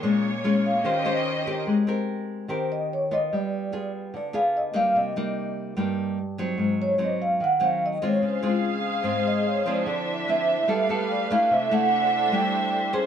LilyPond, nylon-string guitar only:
\new Staff \with { instrumentName = "Nylon-string guitar" } { \time 4/4 \key c \phrygian \tempo 4 = 147 << { <aes des' f'>8 r8 <aes des' f'>8 r8 <des' g' c''>8 <des' g' c''>4 <c' g' bes'>8~ | <c' g' bes'>8 <c' g' bes'>4. <c' g' bes'>4. <ces' f'>8~ | <ces' f'>4 <b f' aes'>4. <b f' aes'>4 <g bes ees'>8~ | <g bes ees'>8 <g bes ees'>4. <g bes ees'>4 r8 <ges c' ees'>8~ |
<ges c' ees'>4 <ges c' ees'>4 r8 <ges c' ees'>4 <aes c' f'>8~ | <aes c' f'>8 <aes c' f'>4. <aes c' f'>4. <f c' fes'>8~ | <f c' fes'>4 <f c' e'>8 r8 <b f' a'>8 <b f' a'>4 <a d' fes'>8~ | <a d' fes'>8 <a d' e'>4. <a d' e'>4. <des' aes' c''>8 | } \\ { bes,2 ees2 | aes2 ees2 | g2 d2 | c2 g,2 |
aes,2 ees2 | des2 aes,2 | d2 g2 | c2 g2 | } >> }